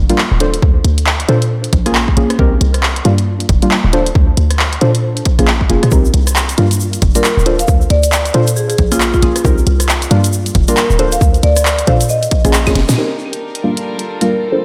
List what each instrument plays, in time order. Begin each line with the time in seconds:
0.09 synth stab G3 A#3 D4 F4, closed hi-hat
0.18 clap
0.32 808-style bass D1
0.40 synth stab D4 F4 A4 C5, closed hi-hat
0.54 closed hi-hat
0.62 808-style bass D2, kick
0.84 808-style bass D2, closed hi-hat
0.98 closed hi-hat
1.07 clap
1.20 closed hi-hat
1.29 808-style bass A#2, synth stab D4 F4 A4 C5, closed hi-hat
1.42 closed hi-hat
1.64 closed hi-hat
1.73 808-style bass A#1, kick, closed hi-hat
1.86 synth stab A#3 C#4 F4 G#4, cross-stick, closed hi-hat
1.95 clap
2.08 kick
2.17 808-style bass A#1, synth stab A#3 C#4 F4 G#4, closed hi-hat
2.30 cross-stick, closed hi-hat
2.39 808-style bass C2, synth stab C4 D#4 G4 A#4, kick
2.61 808-style bass C2, closed hi-hat
2.74 cross-stick, closed hi-hat
2.83 clap
2.96 closed hi-hat
3.05 808-style bass G2, synth stab G3 A#3 D4 F4, closed hi-hat
3.18 closed hi-hat
3.40 closed hi-hat
3.49 808-style bass F1, kick, closed hi-hat
3.62 synth stab G3 A#3 D4 F4, closed hi-hat
3.71 clap
3.84 808-style bass D1
3.93 synth stab D4 F4 A4 C5, closed hi-hat
4.06 closed hi-hat
4.15 808-style bass D2, kick
4.37 808-style bass D2, closed hi-hat
4.51 cross-stick, closed hi-hat
4.59 clap
4.73 closed hi-hat
4.81 808-style bass A#2, synth stab D4 F4 A4 C5, closed hi-hat
4.95 closed hi-hat
5.17 closed hi-hat
5.25 kick, closed hi-hat
5.39 808-style bass A#1, synth stab A#3 C#4 F4 G#4, cross-stick, closed hi-hat
5.48 clap
5.61 kick
5.70 808-style bass F1, synth stab A#3 C#4 F4 G#4, closed hi-hat
5.83 808-style bass A#2, cross-stick, closed hi-hat
5.91 808-style bass C2, synth stab C4 D#4 G4 A#4, kick, shaker
6.05 shaker
6.14 808-style bass C2, closed hi-hat
6.27 cross-stick, closed hi-hat, shaker
6.36 clap, shaker
6.49 closed hi-hat, shaker
6.58 808-style bass G2, synth stab G3 A#3 D4 F4, closed hi-hat
6.71 closed hi-hat, shaker
6.80 shaker
6.93 closed hi-hat, shaker
7.02 808-style bass F1, kick, closed hi-hat
7.15 synth stab G3 A#3 D4 F4, marimba A#4, closed hi-hat, shaker
7.24 clap, shaker
7.37 808-style bass D1, shaker
7.46 synth stab D4 F4 A4 C5, closed hi-hat
7.59 marimba F5, closed hi-hat, shaker
7.68 808-style bass D2, kick, shaker
7.81 shaker
7.90 808-style bass D2, marimba D5, closed hi-hat
8.03 closed hi-hat, shaker
8.12 clap, shaker
8.25 closed hi-hat, shaker
8.34 808-style bass A#2, synth stab D4 F4 A4 C5, closed hi-hat
8.47 closed hi-hat, shaker
8.56 marimba G#4, shaker
8.70 marimba G#4, closed hi-hat, shaker
8.78 808-style bass A#1, kick, closed hi-hat
8.92 synth stab A#3 C#4 F4 G#4, marimba F4, cross-stick, closed hi-hat, shaker
9.00 clap, shaker
9.13 marimba F4, kick, shaker
9.22 808-style bass A#1, synth stab A#3 C#4 F4 G#4, closed hi-hat
9.36 cross-stick, closed hi-hat, shaker
9.45 808-style bass C2, synth stab C4 D#4 G4 A#4, kick, shaker
9.58 shaker
9.67 808-style bass C2, closed hi-hat
9.80 cross-stick, closed hi-hat, shaker
9.89 clap, shaker
10.02 closed hi-hat, shaker
10.11 808-style bass G2, synth stab G3 A#3 D4 F4, closed hi-hat
10.24 closed hi-hat, shaker
10.33 shaker
10.46 closed hi-hat, shaker
10.55 808-style bass F1, kick, closed hi-hat
10.68 synth stab G3 A#3 D4 F4, marimba A#4, closed hi-hat, shaker
10.77 clap, shaker
10.90 808-style bass D1, shaker
10.99 synth stab D4 F4 A4 C5, closed hi-hat
11.12 marimba F5, closed hi-hat, shaker
11.21 808-style bass D2, kick, shaker
11.34 closed hi-hat, shaker
11.43 808-style bass D2, marimba D5, closed hi-hat
11.56 cross-stick, closed hi-hat, shaker
11.65 clap, shaker
11.79 closed hi-hat, shaker
11.87 808-style bass A#2, synth stab D4 F4 A4 C5, marimba F5, kick, closed hi-hat
12.01 closed hi-hat, shaker
12.09 marimba D#5, shaker
12.23 closed hi-hat, shaker
12.31 kick, closed hi-hat
12.45 808-style bass A#1, synth stab A#3 C#4 F4 G#4, cross-stick, closed hi-hat, shaker
12.53 clap, shaker
12.66 synth stab A#3 C#4 F4 G#4, kick, snare, closed hi-hat, claves, shaker
12.75 808-style bass F1, snare, closed hi-hat
12.89 808-style bass A#2, snare, closed hi-hat, shaker
12.98 synth stab C4 D#4 G4 A#4, violin section D4 D#4 G4 A#4
13.33 closed hi-hat
13.55 closed hi-hat
13.64 violin section G3 F4 A4, synth stab G3 A#3 D4 F4
13.77 closed hi-hat
13.99 closed hi-hat
14.21 synth stab G3 A#3 D4 F4, marimba A#4, closed hi-hat
14.52 synth stab D4 F4 A4 C5, violin section E4 F4 C5